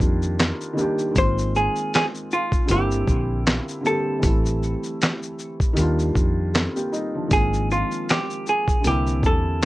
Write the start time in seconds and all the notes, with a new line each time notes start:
Already playing: D#3 G3 A#3 C4 D4 F4 A4
0.00 F2, kick, shaker
0.23 shaker
0.39 snare, clap, closed hi-hat, shaker
0.61 shaker
0.73 D#3 G3 A#3
0.78 D4 G4, shaker
0.99 shaker
1.12 D#3 G#3 A#3
1.16 G#1 C4 F4 C5, kick, closed hi-hat, shaker
1.38 shaker
1.55 G#4, shaker
1.76 shaker
1.94 G#4, snare, clap, closed hi-hat, shaker
2.15 shaker
2.31 F4, shaker
2.52 kick, shaker
2.66 D3 G3 A#3, closed hi-hat, shaker
2.70 G1 C4 E4 G4
2.91 shaker
3.08 A#1, kick, shaker
3.47 snare, clap, closed hi-hat, shaker
3.52 F4
3.69 shaker
3.81 D3 G3 A#3
3.85 C4 G4 A4, shaker
4.19 E3 G3 A3, kick, closed hi-hat, shaker
4.24 A1 C4 E4
4.46 shaker
4.63 shaker
4.84 shaker
5.02 snare, clap, closed hi-hat, shaker
5.23 shaker
5.39 shaker
5.60 kick, shaker
5.73 D#3 G3 A#3, closed hi-hat, shaker
5.78 D#2 D4 F4
5.99 shaker
6.15 F2, kick, shaker
6.54 C4 A4, snare, clap, closed hi-hat, shaker
6.76 A#3 G4, shaker
6.92 G3 D#4, shaker
7.14 F3 D4
7.27 D#3 G#3 A#3, kick, closed hi-hat, shaker
7.32 G#1 C4 F4 G#4
7.54 shaker
7.71 F4, shaker
7.92 shaker
8.09 G4, snare, clap, closed hi-hat, shaker
8.30 shaker
8.47 G#4, shaker
8.68 kick, shaker
8.81 D3 G3 A#3, closed hi-hat, shaker
8.86 C2 C4 E4 G4
9.07 shaker
9.23 E2 A4, kick, shaker